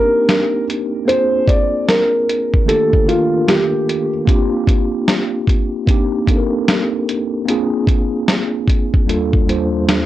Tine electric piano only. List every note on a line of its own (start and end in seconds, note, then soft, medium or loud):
0.00 1.06 A#3 medium
0.00 1.07 C4 medium
0.00 1.08 D4 medium
0.00 1.10 D#4 medium
0.00 1.09 G4 medium
0.00 0.67 A#4 medium
1.06 2.16 A#3 medium
1.06 2.16 C4 medium
1.06 2.17 D4 medium
1.06 2.17 F4 medium
1.10 2.18 G#4 medium
2.65 2.97 D#3 medium
2.65 2.97 A3 medium
2.65 2.98 A#3 medium
2.65 2.98 D4 medium
2.65 2.99 F4 medium
2.70 2.99 G4 medium
3.05 3.85 D#3 medium
3.05 3.86 A#3 medium
3.05 3.87 D4 medium
3.05 3.87 F4 medium
3.05 3.86 A4 medium
3.10 3.87 A#4 medium
4.25 5.35 A#3 medium
4.25 5.36 C4 medium
4.25 5.37 D4 medium
4.25 5.37 F4 medium
4.30 5.38 G4 medium
5.86 6.17 A#3 medium
5.86 6.18 C4 medium
5.86 6.18 D4 medium
5.86 6.19 D#4 medium
5.91 6.19 G4 medium
6.26 7.06 A#3 medium
6.26 7.06 C4 medium
6.26 7.07 D4 medium
6.26 7.07 D#4 medium
6.31 6.38 A4 medium
6.37 7.11 A#4 medium
7.46 8.56 A#3 medium
7.46 8.56 C4 medium
7.46 8.57 D4 medium
7.46 8.57 F4 medium
7.50 8.58 G#4 loud
9.06 9.37 D#2 medium
9.06 9.37 G3 medium
9.06 9.38 A#3 medium
9.06 9.38 D4 medium
9.06 9.39 F4 medium
9.10 9.39 A4 medium
9.45 10.06 D#2 medium
9.45 10.06 G3 medium
9.45 10.06 A#3 medium
9.45 10.06 D4 medium
9.45 10.06 F4 medium
9.50 10.06 C5 medium